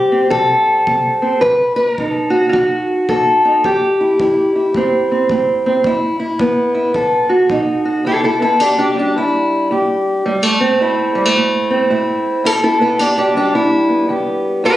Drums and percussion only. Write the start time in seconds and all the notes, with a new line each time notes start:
0.31 kick
0.87 kick
1.42 kick
1.98 kick
2.53 kick
3.09 kick
3.64 kick
4.20 kick
4.75 kick
5.29 kick
5.84 kick
6.39 kick
6.94 kick
7.50 kick